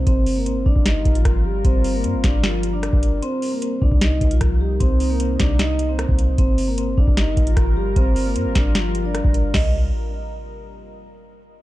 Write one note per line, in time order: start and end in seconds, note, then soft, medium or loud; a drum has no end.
0.07 0.48 G1 loud
0.07 3.19 G3 medium
0.07 0.35 C4 loud
0.07 3.19 F4 medium
0.07 3.19 A#4 medium
0.07 0.35 C5 medium
0.07 kick loud
0.07 closed hi-hat medium
0.26 open hi-hat medium
0.36 0.45 A#3 medium
0.36 0.46 A#4 medium
0.46 0.57 G#1 loud
0.46 0.64 C4 medium
0.46 0.65 C5 medium
0.46 closed hi-hat medium
0.56 0.65 G1 loud
0.66 0.75 G1 loud
0.66 0.84 D4 loud
0.66 0.84 D5 medium
0.66 kick loud
0.76 1.04 G1 loud
0.76 kick loud
0.86 1.13 D#4 medium
0.86 1.14 D#5 medium
0.86 snare loud
0.86 closed hi-hat medium
1.05 1.24 G1 loud
1.05 kick loud
1.05 closed hi-hat medium
1.15 1.44 F3 medium
1.15 1.43 F4 medium
1.15 closed hi-hat medium
1.25 1.63 G1 loud
1.25 kick medium
1.25 cross-stick medium
1.25 closed hi-hat medium
1.45 1.63 G3 medium
1.45 1.63 G4 medium
1.65 2.06 G1 loud
1.65 1.92 C4 loud
1.65 1.93 C5 medium
1.65 kick loud
1.65 closed hi-hat medium
1.84 open hi-hat medium
1.94 2.03 A#3 medium
1.94 2.04 A#4 medium
2.04 2.15 G2 loud
2.04 2.22 C4 medium
2.04 2.23 C5 medium
2.04 closed hi-hat medium
2.14 2.23 G1 loud
2.24 2.90 G1 loud
2.24 2.42 D4 medium
2.24 2.42 D5 medium
2.24 kick loud
2.24 snare medium
2.24 closed hi-hat medium
2.43 2.72 F3 medium
2.43 2.71 F4 medium
2.43 snare loud
2.43 closed hi-hat medium
2.63 closed hi-hat medium
2.73 3.20 D4 medium
2.73 3.20 D5 medium
2.83 cross-stick medium
2.83 closed hi-hat medium
2.93 3.21 G1 loud
2.93 kick loud
3.03 closed hi-hat medium
3.22 6.35 C3 medium
3.22 6.35 A#3 medium
3.22 3.50 C4 loud
3.22 6.35 D#4 medium
3.22 3.51 C5 medium
3.22 closed hi-hat medium
3.42 open hi-hat medium
3.52 3.61 A#3 medium
3.52 3.62 A#4 medium
3.62 3.80 C4 medium
3.62 3.81 C5 medium
3.62 closed hi-hat medium
3.82 3.91 C2 loud
3.82 4.00 D4 medium
3.82 4.00 D5 medium
3.82 kick medium
3.92 4.20 C2 loud
3.92 kick loud
4.01 4.29 D#4 medium
4.01 4.30 D#5 medium
4.01 snare loud
4.01 closed hi-hat medium
4.21 4.40 C2 loud
4.21 kick loud
4.21 closed hi-hat medium
4.31 4.59 F3 medium
4.31 4.59 F4 medium
4.31 closed hi-hat medium
4.41 4.79 C2 loud
4.41 kick medium
4.41 cross-stick medium
4.41 closed hi-hat medium
4.61 4.79 G3 medium
4.61 4.79 G4 medium
4.80 5.37 C2 loud
4.80 5.08 C4 loud
4.80 5.09 C5 medium
4.80 kick loud
4.80 closed hi-hat medium
5.00 open hi-hat medium
5.10 5.19 A#3 medium
5.10 5.19 A#4 medium
5.20 5.38 C4 medium
5.20 5.38 C5 medium
5.20 closed hi-hat medium
5.40 6.06 C2 loud
5.40 5.58 D4 medium
5.40 5.58 D5 medium
5.40 kick loud
5.40 snare loud
5.40 closed hi-hat medium
5.59 5.87 D#4 medium
5.59 5.88 D#5 medium
5.59 snare loud
5.59 closed hi-hat medium
5.79 closed hi-hat medium
5.89 6.35 C4 medium
5.89 6.36 C5 medium
5.99 cross-stick medium
5.99 closed hi-hat medium
6.09 6.37 C2 loud
6.09 kick loud
6.19 closed hi-hat medium
6.38 6.79 G1 loud
6.38 9.51 G3 medium
6.38 6.66 C4 loud
6.38 9.51 F4 medium
6.38 9.51 A#4 medium
6.38 6.67 C5 medium
6.38 kick loud
6.38 closed hi-hat medium
6.58 open hi-hat medium
6.68 6.77 A#3 medium
6.68 6.77 A#4 medium
6.78 6.89 G#1 loud
6.78 6.96 C4 medium
6.78 6.96 C5 medium
6.78 closed hi-hat medium
6.88 6.97 G1 loud
6.98 7.07 G1 loud
6.98 7.16 D4 medium
6.98 7.16 D5 medium
6.98 kick loud
7.07 7.36 G1 loud
7.07 kick loud
7.17 7.45 D#4 medium
7.17 7.46 D#5 medium
7.17 snare loud
7.17 closed hi-hat medium
7.37 7.56 G1 loud
7.37 kick loud
7.37 closed hi-hat medium
7.47 7.75 F3 medium
7.47 7.75 F4 medium
7.47 closed hi-hat medium
7.57 7.95 G1 loud
7.57 kick loud
7.57 cross-stick medium
7.57 closed hi-hat medium
7.77 7.95 G3 medium
7.77 7.95 G4 medium
7.96 8.37 G1 loud
7.96 8.24 C4 loud
7.96 8.24 C5 medium
7.96 kick loud
7.96 closed hi-hat medium
8.16 open hi-hat medium
8.26 8.35 A#3 medium
8.26 8.35 A#4 medium
8.36 8.47 G2 loud
8.36 8.54 C4 medium
8.36 8.54 C5 medium
8.36 closed hi-hat medium
8.46 8.55 G1 loud
8.55 9.22 G1 loud
8.55 8.74 D4 medium
8.55 8.74 D5 medium
8.55 kick loud
8.55 snare loud
8.55 closed hi-hat medium
8.75 9.03 F3 medium
8.75 9.03 F4 medium
8.75 snare loud
8.75 closed hi-hat medium
8.95 closed hi-hat medium
9.05 9.51 D4 medium
9.05 9.51 D5 medium
9.15 cross-stick medium
9.15 closed hi-hat medium
9.24 9.53 G1 loud
9.24 kick loud
9.34 closed hi-hat medium
9.54 9.91 C2 loud
9.54 9.72 D#5 medium
9.54 kick loud
9.54 snare loud
9.54 crash medium